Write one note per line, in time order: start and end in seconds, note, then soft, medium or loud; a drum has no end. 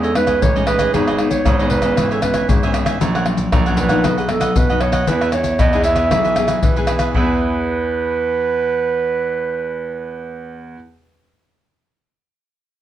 0.00 0.34 E2 medium
0.00 0.39 E3 medium
0.00 0.11 G#3 medium
0.00 0.11 C#4 medium
0.00 0.11 D#4 medium
0.00 0.14 C#5 medium
0.00 0.14 D#5 medium
0.04 0.14 G#4 medium
0.04 0.15 A4 medium
0.04 pandeiro soft
0.04 maracas soft
0.14 0.50 G#3 soft
0.14 0.50 C#4 medium
0.14 0.51 D#4 medium
0.14 0.44 B4 medium
0.14 muted cavaquinho stroke soft
0.14 pandeiro medium
0.14 tamborim medium
0.27 0.53 G#4 soft
0.27 0.53 C#5 soft
0.27 0.53 D#5 medium
0.27 pandeiro medium
0.27 tamborim medium
0.27 maracas medium
0.27 surdo soft
0.42 0.86 A1 medium
0.42 0.92 E3 medium
0.42 0.66 C#5 loud
0.42 pandeiro medium
0.42 maracas medium
0.42 surdo medium
0.56 0.90 G#3 medium
0.56 0.90 C#4 medium
0.56 0.91 D#4 medium
0.56 0.66 G#4 medium
0.56 0.66 C#5 medium
0.56 0.67 D#5 medium
0.56 pandeiro soft
0.56 maracas soft
0.67 0.79 E4 medium
0.67 0.79 G#4 soft
0.67 0.92 B4 medium
0.67 0.78 C#5 medium
0.67 0.78 D#5 medium
0.67 pandeiro medium
0.67 tamborim medium
0.79 0.93 G#4 medium
0.79 0.92 C#5 medium
0.79 0.92 D#5 medium
0.79 pandeiro medium
0.79 tamborim medium
0.79 maracas medium
0.79 surdo soft
0.94 1.38 G#1 medium
0.94 1.44 G#2 soft
0.94 1.10 D#3 soft
0.94 1.10 B3 medium
0.94 1.06 D#4 soft
0.94 1.10 D#4 medium
0.94 1.32 G#4 medium
0.94 1.06 G#4 soft
0.94 1.06 B4 soft
0.94 1.07 D#5 soft
0.94 pandeiro medium
0.94 maracas medium
0.94 surdo medium
1.07 1.18 G#4 soft
1.07 1.18 B4 medium
1.07 1.18 D#5 medium
1.07 pandeiro soft
1.07 tamborim medium
1.07 maracas soft
1.18 1.45 D#3 soft
1.18 1.54 B3 medium
1.18 1.54 D#4 medium
1.18 muted cavaquinho stroke soft
1.18 pandeiro medium
1.18 tamborim medium
1.31 1.70 C#5 medium
1.31 pandeiro medium
1.31 maracas medium
1.31 surdo soft
1.45 1.68 G#1 medium
1.45 1.59 D#3 soft
1.45 1.58 D#4 soft
1.45 1.58 G#4 soft
1.45 1.58 B4 soft
1.45 1.58 D#5 medium
1.45 pandeiro medium
1.45 tamborim medium
1.45 maracas medium
1.45 surdo medium
1.59 1.81 D#3 medium
1.59 1.81 B3 medium
1.59 1.81 D#4 medium
1.59 1.83 G#4 medium
1.59 1.82 B4 medium
1.59 1.81 D#5 medium
1.59 pandeiro soft
1.59 maracas soft
1.70 1.93 G#1 medium
1.70 2.07 B4 medium
1.70 pandeiro medium
1.82 2.19 E3 medium
1.82 2.19 B3 medium
1.82 2.19 C#4 medium
1.82 1.96 G#4 soft
1.82 1.96 B4 medium
1.82 1.95 D#5 medium
1.82 pandeiro soft
1.82 tamborim medium
1.82 maracas medium
1.82 surdo soft
1.97 2.42 G#1 medium
1.97 2.47 G#2 medium
1.97 2.09 E4 soft
1.97 2.10 G#4 soft
1.97 2.10 C#5 medium
1.97 2.10 E5 medium
1.97 pandeiro medium
1.97 tamborim medium
1.97 maracas medium
1.97 surdo soft
2.11 2.21 G#4 medium
2.11 2.22 A4 medium
2.11 2.21 C#5 medium
2.11 2.22 E5 medium
2.11 pandeiro soft
2.11 maracas soft
2.22 2.58 E3 medium
2.22 2.58 B3 medium
2.22 2.58 C#4 medium
2.22 2.47 B4 medium
2.22 muted cavaquinho stroke soft
2.22 pandeiro medium
2.22 tamborim medium
2.22 maracas medium
2.22 surdo soft
2.34 2.61 G#4 soft
2.34 2.60 C#5 medium
2.34 2.60 E5 soft
2.34 pandeiro medium
2.34 tamborim medium
2.34 maracas medium
2.34 surdo soft
2.49 2.93 G#1 medium
2.49 2.99 G#2 medium
2.49 2.86 G#4 medium
2.49 pandeiro medium
2.49 maracas medium
2.49 surdo medium
2.63 2.98 E3 medium
2.63 2.98 B3 medium
2.63 2.98 C#4 medium
2.63 2.73 G#4 medium
2.63 2.74 C#5 medium
2.63 2.74 E5 medium
2.63 pandeiro soft
2.63 maracas soft
2.74 2.86 E4 soft
2.74 2.86 G#4 soft
2.74 2.85 C#5 medium
2.74 2.84 E5 medium
2.74 pandeiro medium
2.74 tamborim medium
2.74 maracas medium
2.86 3.00 G#4 medium
2.86 2.99 C#5 medium
2.86 2.99 E5 medium
2.86 pandeiro medium
2.86 tamborim medium
2.86 maracas medium
2.86 surdo soft
3.01 3.45 A#1 medium
3.01 3.51 A#2 soft
3.01 3.17 F#3 soft
3.01 3.17 A#3 soft
3.01 3.17 C#4 medium
3.01 3.13 F#4 medium
3.01 3.13 A#4 soft
3.01 3.14 C#5 soft
3.01 3.13 F#5 medium
3.01 pandeiro medium
3.01 maracas medium
3.01 surdo medium
3.15 3.25 A#4 medium
3.15 3.25 C#5 medium
3.15 3.25 F#5 medium
3.15 pandeiro soft
3.15 tamborim medium
3.15 maracas soft
3.25 3.61 F#3 medium
3.25 3.62 A#3 soft
3.25 3.62 C#4 medium
3.25 muted cavaquinho stroke soft
3.25 pandeiro medium
3.25 tamborim medium
3.37 pandeiro medium
3.37 maracas medium
3.37 surdo soft
3.52 3.75 A#1 loud
3.52 4.02 A#2 medium
3.52 3.65 F#4 soft
3.52 3.65 A#4 medium
3.52 3.65 C#5 soft
3.52 3.65 F#5 soft
3.52 pandeiro medium
3.52 tamborim medium
3.52 maracas medium
3.52 surdo medium
3.66 3.88 F#3 medium
3.66 3.88 A#3 medium
3.66 3.89 C#4 medium
3.66 3.89 A#4 medium
3.66 3.88 C#5 medium
3.66 3.87 F#5 medium
3.66 pandeiro soft
3.66 maracas soft
3.77 4.00 A#1 medium
3.77 4.15 B4 medium
3.77 pandeiro medium
3.77 maracas medium
3.88 4.26 F#3 medium
3.88 4.26 B3 medium
3.88 4.26 D#4 medium
3.88 4.03 A#4 medium
3.88 4.02 C#5 medium
3.88 4.02 F#5 medium
3.88 pandeiro medium
3.88 tamborim medium
3.88 maracas medium
3.88 surdo soft
4.04 4.49 B1 medium
4.04 4.54 B2 medium
4.04 4.16 F#4 medium
4.04 4.17 B4 soft
4.04 4.17 D#5 soft
4.04 4.16 F#5 soft
4.04 pandeiro medium
4.04 tamborim medium
4.04 maracas medium
4.04 surdo medium
4.17 4.32 G#4 medium
4.17 4.28 B4 medium
4.17 4.28 D#5 medium
4.17 4.28 F#5 medium
4.17 pandeiro soft
4.17 maracas soft
4.29 4.54 F#3 soft
4.29 4.54 B3 medium
4.29 4.55 D#4 medium
4.29 4.59 A4 medium
4.29 muted cavaquinho stroke soft
4.29 pandeiro medium
4.29 tamborim medium
4.40 4.68 B4 soft
4.40 4.67 D#5 medium
4.40 4.67 F#5 medium
4.40 pandeiro medium
4.40 tamborim medium
4.40 maracas medium
4.40 surdo soft
4.56 5.06 F#2 medium
4.56 5.01 B2 medium
4.56 4.83 B4 medium
4.56 pandeiro medium
4.56 maracas medium
4.56 surdo medium
4.69 5.05 F#3 medium
4.69 5.05 B3 medium
4.69 5.05 D#4 medium
4.69 4.80 B4 medium
4.69 4.80 D#5 medium
4.69 4.80 F#5 medium
4.69 pandeiro soft
4.69 maracas soft
4.80 4.93 F#4 soft
4.80 4.92 B4 soft
4.80 5.10 C#5 medium
4.80 4.92 D#5 medium
4.80 4.91 F#5 medium
4.80 pandeiro medium
4.80 tamborim medium
4.92 5.06 B4 medium
4.92 5.06 D#5 medium
4.92 5.06 F#5 medium
4.92 pandeiro medium
4.92 tamborim medium
4.92 maracas medium
4.92 surdo soft
5.07 5.52 E2 medium
5.07 5.58 E3 medium
5.07 5.30 B3 medium
5.07 5.20 E4 soft
5.07 5.31 E4 medium
5.07 5.20 G#4 soft
5.07 5.31 G#4 medium
5.07 5.20 B4 medium
5.07 5.32 B4 medium
5.07 5.20 E5 medium
5.07 pandeiro medium
5.07 maracas medium
5.07 surdo medium
5.21 5.31 G#4 soft
5.21 5.31 B4 medium
5.21 5.32 E5 medium
5.21 pandeiro soft
5.21 tamborim medium
5.21 maracas soft
5.32 5.58 B3 medium
5.32 5.59 E4 medium
5.32 5.59 G#4 medium
5.32 5.58 C#5 medium
5.32 muted cavaquinho stroke soft
5.32 pandeiro medium
5.32 tamborim medium
5.32 maracas medium
5.44 pandeiro medium
5.44 maracas medium
5.44 surdo soft
5.59 5.82 E2 medium
5.59 6.10 B2 medium
5.59 5.71 E4 soft
5.59 5.72 G#4 soft
5.59 5.72 B4 medium
5.59 5.84 D#5 loud
5.59 5.71 E5 soft
5.59 pandeiro medium
5.59 tamborim medium
5.59 maracas medium
5.59 surdo medium
5.73 6.08 B3 medium
5.73 6.08 E4 medium
5.73 5.96 G#4 medium
5.73 6.09 G#4 medium
5.73 5.95 B4 medium
5.73 5.94 E5 medium
5.73 pandeiro soft
5.73 maracas soft
5.83 6.07 E2 medium
5.83 6.85 E5 loud
5.83 pandeiro medium
5.83 maracas medium
5.96 6.10 G#4 medium
5.96 6.10 B4 medium
5.96 6.09 E5 medium
5.96 pandeiro soft
5.96 tamborim medium
5.96 maracas medium
5.96 surdo soft
6.11 6.56 B1 medium
6.11 6.61 E3 soft
6.11 6.34 B3 soft
6.11 6.23 E4 soft
6.11 6.34 E4 medium
6.11 6.24 G#4 soft
6.11 6.34 G#4 medium
6.11 6.24 B4 soft
6.11 6.23 E5 soft
6.11 pandeiro medium
6.11 tamborim medium
6.11 maracas medium
6.11 surdo medium
6.24 6.35 G#4 medium
6.24 6.35 B4 medium
6.24 6.35 E5 medium
6.24 pandeiro soft
6.24 maracas soft
6.36 6.72 B3 soft
6.36 6.72 E4 medium
6.36 6.73 G#4 medium
6.36 muted cavaquinho stroke soft
6.36 pandeiro medium
6.36 tamborim medium
6.36 maracas medium
6.36 surdo soft
6.47 6.74 G#4 soft
6.47 6.74 B4 medium
6.47 6.74 E5 medium
6.47 pandeiro medium
6.47 tamborim medium
6.47 maracas medium
6.47 surdo soft
6.63 7.13 B2 soft
6.63 7.08 E3 medium
6.63 pandeiro medium
6.63 maracas medium
6.63 surdo medium
6.76 7.12 B3 medium
6.76 7.12 E4 medium
6.76 6.86 G#4 medium
6.76 7.12 G#4 medium
6.76 6.87 B4 medium
6.76 6.87 E5 medium
6.76 pandeiro soft
6.76 maracas soft
6.87 7.00 E4 soft
6.87 6.99 G#4 soft
6.87 6.99 B4 soft
6.87 6.98 E5 medium
6.87 pandeiro medium
6.87 tamborim medium
6.87 maracas medium
6.99 7.13 G#4 medium
6.99 7.13 B4 medium
6.99 7.13 E5 medium
6.99 pandeiro medium
6.99 tamborim medium
6.99 maracas medium
6.99 surdo soft
7.11 10.75 E2 medium
7.11 10.75 E3 medium
7.11 10.78 E4 medium
7.11 10.74 B4 medium
7.11 surdo loud
7.15 10.80 B3 medium
7.15 10.79 G#4 medium
7.15 10.79 B4 medium
7.15 10.80 E5 medium
7.22 10.85 E4 medium
7.26 10.89 G#4 medium